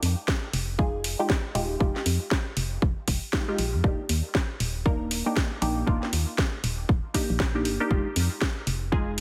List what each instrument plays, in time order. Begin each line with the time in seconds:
0.03 fm bass F2, open hi-hat
0.28 kick, snare
0.53 fm bass F1, open hi-hat
0.78 synth stab G#3 D#4 F4 G#4, kick
1.04 open hi-hat
1.19 synth stab G#3 D#4 F4 G4
1.30 kick, snare
1.55 fm bass D#1, synth stab G#3 D#4 F4 G4, open hi-hat
1.80 fm bass F1, synth stab G#3 D#4 F4 G4, kick
1.96 snare
2.06 fm bass F2, open hi-hat
2.31 kick, snare
2.57 fm bass F1, open hi-hat
2.82 fm bass F1, kick
3.08 fm bass F1, kick, open hi-hat
3.33 synth stab G#3 D#4 F4 G4, kick, snare
3.48 synth stab G#3 D#4 F4 G4
3.58 fm bass A#1, open hi-hat
3.74 fm bass F2
3.84 fm bass D#1, synth stab A#3 D4 D#4 G4, kick
4.09 fm bass D#2, open hi-hat
4.35 kick, snare
4.60 fm bass D#1, open hi-hat
4.85 synth stab A#3 D4 D#4 A#4, kick
5.11 open hi-hat
5.26 synth stab A#3 D4 D#4 G4
5.37 kick, snare
5.62 fm bass A#1, synth stab A#3 D4 D#4 G4, open hi-hat
5.87 fm bass D#1, synth stab A#3 D4 D#4 F4, kick
6.03 snare
6.13 fm bass D#2, open hi-hat
6.38 kick, snare
6.64 fm bass D#1, open hi-hat
6.89 fm bass D#1, kick
7.14 synth stab A#3 D4 D#4 G4, kick, open hi-hat
7.30 fm bass A#1
7.40 kick, snare
7.55 synth stab A#3 D4 D#4 G4
7.65 fm bass G1, open hi-hat
7.80 synth stab A#3 D4 D#4 G4
7.90 fm bass F1, synth stab G#3 D#4 F4 G4, kick
8.16 fm bass F2, open hi-hat
8.42 kick, snare
8.67 fm bass F1, open hi-hat
8.92 synth stab G#3 D#4 F4 G#4, kick